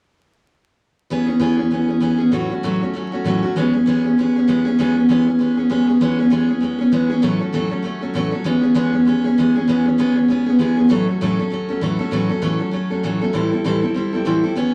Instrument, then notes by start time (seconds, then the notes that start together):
steel-string acoustic guitar
1.10 E3 B3 C#4 G#4
1.26 B3 C#4 G#4
1.39 E3 B3 C#4 G#4
1.57 B3 C#4 G#4
1.71 E3 B3 C#4 G#4
1.89 B3 C#4 G#4
2.00 E3 B3 C#4 G#4
2.18 B3 C#4 G#4
2.31 A2 E3 F#3 A3 C#4 F#4
2.50 F#3 A3 C#4 F#4
2.63 A2 E3 F#3 A3 C#4 F#4
2.81 F#3 A3 C#4 F#4
2.93 F#3 A3 C#4 F#4
3.12 F#3 A3 C#4 F#4
3.24 A2 E3 F#3 A3 C#4 F#4
3.43 F#3 A3 C#4 F#4
3.56 E3 G#3 B3 C#4 G#4
3.73 B3 C#4 G#4
3.86 E3 G#3 B3 C#4 G#4
4.04 B3 C#4 G#4
4.18 G#3 B3 C#4 G#4
4.36 B3 C#4 G#4
4.48 E3 G#3 B3 C#4 G#4
4.65 B3 C#4 G#4
4.79 E3 G#3 B3 C#4 G#4
4.97 B3 C#4 G#4
5.09 E3 G#3 B3 C#4 G#4
5.26 B3 C#4 G#4
5.39 G#3 B3 C#4 G#4
5.57 B3 C#4 G#4
5.69 E3 G#3 B3 C#4 G#4
5.87 B3 C#4 G#4
6.01 E3 G#3 B3 C#4 G#4
6.19 B3 C#4 G#4
6.30 E3 G#3 B3 C#4 G#4
6.48 B3 C#4 G#4
6.60 G#3 B3 C#4 G#4
6.78 B3 C#4 G#4
6.92 E3 G#3 B3 C#4 G#4
7.09 B3 C#4 G#4
7.22 A2 E3 F#3 A3 C#4 A4
7.40 F#3 A3 C#4 A4
7.53 A2 E3 F#3 A3 C#4 A4
7.70 F#3 A3 C#4 A4
7.83 F#3 A3 C#4 A4
8.01 F#3 A3 C#4 A4
8.14 A2 E3 F#3 A3 C#4 A4
8.31 F#3 A3 C#4 A4
8.44 E3 G#3 B3 C#4 G#4
8.62 B3 C#4 G#4
8.74 E3 G#3 B3 C#4 G#4
8.92 B3 C#4 G#4
9.05 G#3 B3 C#4 G#4
9.24 B3 C#4 G#4
9.38 E3 G#3 B3 C#4 G#4
9.56 B3 C#4 G#4
9.68 E3 G#3 B3 C#4 G#4
9.85 B3 C#4 G#4
9.98 E3 G#3 B3 C#4 G#4
10.15 B3 C#4 G#4
10.28 G#3 B3 C#4 G#4
10.46 B3 C#4 G#4
10.59 E3 G#3 B3 C#4 G#4
10.77 B3 C#4 G#4
10.89 A2 E3 F#3 A3 C#4 A4
11.07 F#3 A3 C#4 A4
11.21 A2 E3 F#3 A3 C#4 A4
11.39 F#3 A3 C#4 A4
11.50 F#3 A3 C#4 A4
11.69 F#3 A3 C#4 A4
11.81 A2 E3 F#3 A3 C#4 A4
11.99 F#3 A3 C#4 A4
12.11 A2 E3 F#3 A3 C#4 A4
12.29 F#3 A3 C#4 A4
12.42 A2 E3 F#3 A3 C#4 A4
12.59 F#3 A3 C#4 A4
12.71 F#3 A3 C#4 A4
12.90 F#3 A3 C#4 A4
13.03 A2 E3 F#3 A3 C#4 A4
13.21 F#3 A3 C#4 A4
13.33 A2 E3 G3 C4 E4 A4
13.52 G3 C4 E4 A4
13.64 A2 E3 G3 C4 E4 A4
13.81 G3 C4 E4 A4
13.94 G3 C4 E4 A4
14.13 G3 C4 E4 A4
14.25 A2 E3 G3 C4 E4 A4
14.44 G3 C4 E4 A4
14.55 E3 B3 C#4 G#4